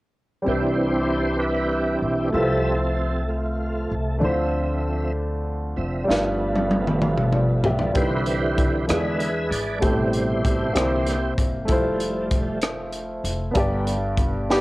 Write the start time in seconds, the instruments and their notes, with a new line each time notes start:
0.42 upright piano C3 G3 C4
0.46 upright bass C2, tonewheel organ E3 C4 D4 E4 G4 C5, french horn section G3 C4 E5, upright piano E4 B4
1.33 tonewheel organ C5
1.38 tonewheel organ E4 G4 B4
2.02 upright bass B1
2.30 upright bass C2, upright piano C3 A3 E4 F4, tonewheel organ F3 G3 A3 A4 E5
2.35 french horn section F3 A3, tonewheel organ C4, upright piano B4
2.44 upright piano C5
3.28 tonewheel organ A3 F4
3.91 upright bass C2
4.18 upright bass D2, upright piano D3 A3 D4, french horn section D4
4.23 tonewheel organ F3 C4 E5, upright piano E4 C5
4.29 upright piano F4
5.76 upright bass F1, tonewheel organ F3 C4 E5
6.04 upright piano G3 D4
6.08 upright bass G1, upright piano G2 F4 B4, tonewheel organ F3 A3 B3, french horn section G3, snare
6.56 high tom
6.71 high tom
6.87 mid tom
7.02 mid tom
7.18 mid tom
7.33 upright piano F4 D5, mid tom
7.64 upright bass B1, upright piano G4 E5, floor tom
7.79 upright piano F4 D5, floor tom
7.94 upright bass C2, upright piano C3 G3 C4 D#4 B4, tonewheel organ D3 E3 E4 G4 B4 C5, french horn section G3 C4 E5, kick, closed hi-hat
8.02 upright piano E4
8.26 closed hi-hat
8.58 kick, closed hi-hat
8.87 upright bass E2, tonewheel organ D3 G#3 B3 G#4 B4 E5, upright piano E3 F3 D4 E4 B4, french horn section G#3 D4, cross-stick, closed hi-hat
8.93 upright piano G#3
9.19 tonewheel organ E5, closed hi-hat
9.50 upright bass G#1, tonewheel organ D5, closed hi-hat
9.79 upright bass A1, upright piano A2 A3 E4 G4, tonewheel organ B2 C3 G3 E4 G4 C5, kick, closed hi-hat
9.83 french horn section G3 A3 C5, upright piano C5
10.13 closed hi-hat
10.45 kick, closed hi-hat
10.73 upright bass C2, upright piano C3 A#3 D4 G4 C5, tonewheel organ D3 E3, closed hi-hat
10.77 tonewheel organ A#3, french horn section A#3, upright piano E4, cross-stick
11.07 cross-stick, closed hi-hat
11.38 upright bass G1, kick, closed hi-hat
11.65 upright piano A3 E4, kick, closed hi-hat
11.69 upright bass F1, french horn section F3 A3, tonewheel organ F3 G3 A3, upright piano F4 C5
12.00 closed hi-hat
12.31 kick, closed hi-hat
12.62 cross-stick, closed hi-hat
12.93 closed hi-hat
13.24 upright bass F1, closed hi-hat
13.51 upright bass G1, upright piano G2 B3 D4, closed hi-hat
13.55 french horn section D3 G3 B3 D4, tonewheel organ D3 G3 B3, upright piano G4 D5, kick
13.87 closed hi-hat
14.18 kick, closed hi-hat
14.50 clean electric guitar B3 G4, horn section B3 D4 G4, snare